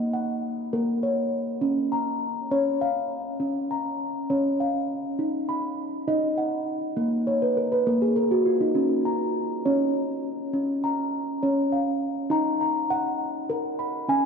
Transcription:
0.00 0.43 A#3 medium
0.00 0.12 F#5 medium
0.13 1.03 F#5 medium
0.73 1.33 A#3 medium
0.73 1.62 A#4 medium
1.03 1.92 C#5 medium
1.61 2.50 C#4 medium
1.92 2.81 A#5 medium
2.51 3.11 C#4 medium
2.51 3.41 C#5 medium
2.81 3.71 F5 medium
3.40 4.29 C#4 medium
3.71 4.60 A#5 medium
4.30 4.90 C#4 medium
4.30 5.19 C#5 medium
4.60 5.49 F5 medium
5.19 6.06 D#4 medium
5.49 6.38 B5 medium
6.08 6.67 D#4 medium
6.08 6.97 D#5 medium
6.38 7.27 F#5 medium
6.97 7.85 A#3 medium
7.27 7.55 C#5 medium
7.42 7.70 B4 medium
7.57 7.84 A#4 medium
7.72 7.99 B4 medium
7.87 8.46 A#3 medium
7.87 8.14 A#4 medium
8.02 8.29 G#4 medium
8.16 8.44 A#4 medium
8.31 8.59 F#4 medium
8.46 8.73 F4 medium
8.61 8.88 D#4 medium
8.75 9.64 C#4 medium
9.05 9.94 A#5 medium
9.65 10.24 C#4 medium
9.65 10.54 C#5 medium
10.53 11.42 C#4 medium
10.84 11.72 A#5 medium
11.43 12.02 C#4 medium
11.43 12.31 C#5 medium
11.72 12.61 F5 medium
12.30 14.05 D#4 medium
12.30 12.60 A#5 medium
12.61 13.50 A#5 medium
12.90 13.50 F#5 medium
13.50 14.09 A#4 medium
13.79 14.26 B5 medium
14.08 14.26 C#4 medium
14.08 14.26 G#5 medium

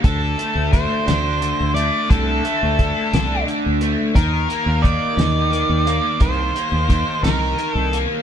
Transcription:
0.00 0.71 D3 medium
0.00 1.06 D4 medium
0.04 0.34 D2 medium
0.04 0.72 A4 medium
0.04 kick medium
0.04 closed hi-hat medium
0.38 1.74 A3 medium
0.38 closed hi-hat medium
0.55 0.85 D2 medium
0.73 1.40 D3 medium
0.73 1.72 C5 medium
0.73 kick medium
0.73 closed hi-hat medium
1.06 1.52 D2 medium
1.06 2.78 D4 medium
1.06 snare medium
1.06 closed hi-hat medium
1.41 2.09 D3 medium
1.41 closed hi-hat medium
1.60 1.89 D2 medium
1.74 2.44 A3 medium
1.74 2.10 D5 medium
1.74 closed hi-hat medium
2.10 2.40 C2 medium
2.10 2.79 D3 medium
2.10 3.43 A4 medium
2.10 kick medium
2.10 closed hi-hat medium
2.45 3.81 A3 medium
2.45 closed hi-hat soft
2.63 2.92 D2 medium
2.79 3.46 D3 medium
2.79 kick medium
2.79 closed hi-hat medium
3.13 3.43 C2 medium
3.13 4.16 D4 medium
3.13 snare medium
3.13 closed hi-hat medium
3.48 4.15 D3 medium
3.48 closed hi-hat soft
3.66 3.95 D2 medium
3.81 4.16 A3 medium
3.81 closed hi-hat medium
4.15 4.46 D#2 medium
4.15 4.82 D#3 medium
4.15 4.86 A#4 medium
4.15 kick medium
4.15 closed hi-hat medium
4.49 5.86 A#3 medium
4.49 closed hi-hat soft
4.66 4.96 D#2 medium
4.82 5.51 D#3 medium
4.82 6.24 D5 medium
4.82 kick medium
4.82 closed hi-hat soft
5.17 5.62 D#2 medium
5.17 6.89 D#4 medium
5.17 snare medium
5.17 closed hi-hat medium
5.52 6.19 D#3 medium
5.52 closed hi-hat soft
5.69 5.99 D#2 medium
5.87 6.55 A#3 medium
5.87 closed hi-hat medium
6.20 6.50 C2 medium
6.20 6.88 D#3 medium
6.20 7.23 C5 medium
6.20 kick loud
6.20 closed hi-hat medium
6.56 7.92 A#3 medium
6.56 closed hi-hat medium
6.72 7.02 D#2 medium
6.89 7.58 D#3 medium
6.89 kick medium
6.89 closed hi-hat medium
7.23 7.53 C2 medium
7.23 8.22 D#4 medium
7.23 7.74 A#4 medium
7.23 snare medium
7.23 closed hi-hat medium
7.59 8.22 D#3 medium
7.59 closed hi-hat soft
7.74 8.05 C2 medium
7.74 7.97 A4 medium
7.93 8.22 A#3 medium
7.93 closed hi-hat medium

